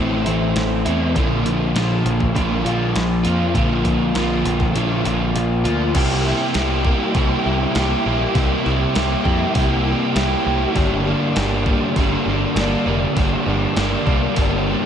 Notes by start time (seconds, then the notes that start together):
Already playing: A1 A2 E3 A3 C4 E4
0.24 A1 A3 C4 E4, open hi-hat
0.56 A1, snare, open hi-hat
0.85 E2 A3 C4 E4, open hi-hat
1.15 A#1 A#2 D3 F3 A#3 F4, kick, open hi-hat
1.45 A#1, open hi-hat
1.74 A#1 D3 F3 A#3 F4, snare, open hi-hat
2.05 A#1, open hi-hat
2.20 kick
2.34 A#1 A#2 D3 F3 A#3 F4, kick, open hi-hat
2.64 A#1 F3 A#3 F4, open hi-hat
2.95 A#1, snare, open hi-hat
3.23 F2 F3 A#3 F4, open hi-hat
3.53 A#1 A#2 D3 F3 A#3 F4, kick, open hi-hat
3.85 A#1, kick, open hi-hat
4.14 A#1 D3 F3 A#3 F4, snare, open hi-hat
4.45 A#1, open hi-hat
4.60 kick, snare
4.74 A#1 A#2 D3 F3 A#3 F4, open hi-hat
5.04 A#1 F3 A#3 F4, open hi-hat
5.35 A#1, open hi-hat
5.64 D2 F3 A#3 F4, open hi-hat
5.94 C2 C3 G3 A#3 E4 G4, kick, open hi-hat, crash
6.25 A#3 E4 G4, snare
6.54 C2 G3 A#3 E4 G4, snare, open hi-hat
6.84 A#3 E4 G4, kick
7.13 C2 C3 G3 A#3 E4 G4, kick, open hi-hat
7.43 C2 E4 G4
7.47 A#3
7.75 C2 G3 A#3 E4 G4, snare, open hi-hat
8.05 A#1 A#3 E4 G4
8.34 C2 C3 G3 A#3 E4 G4, kick, open hi-hat
8.63 C2 A#3 E4 G4, snare
8.94 C2 G3 A#3 E4 G4, snare, open hi-hat
9.23 F2 E4 G4, kick
9.28 A#3
9.54 C2 C3 G3 A#3 E4 G4, kick, open hi-hat
9.84 A#3 E4 G4
10.14 C2 G3 A#3 E4 G4, snare, open hi-hat
10.44 C2 A#3 E4 G4
10.74 G1 G2 D3 G3 A#3 D4, kick, open hi-hat
11.05 G3 A#3 D4
11.36 G1 D3 G3 A#3 D4, snare, open hi-hat
11.66 A#3 D4, kick
11.70 G3
11.96 G1 G2 D3 G3 A#3 D4, kick, open hi-hat
12.26 G1 A#3 D4
12.30 G3
12.55 G1 D3 G3, snare, open hi-hat
12.59 A#3 D4
12.86 F1 G3 A#3 D4
13.16 G1 G2 D3 G3 A#3 D4, kick, open hi-hat
13.46 G1 G3 A#3 D4
13.76 G1 D3 G3 A#3, snare, open hi-hat
13.80 D4
14.06 C2 A#3 D4, kick
14.10 G3
14.36 G1 G2 D3 G3 A#3 D4, kick, open hi-hat
14.66 G3 A#3 D4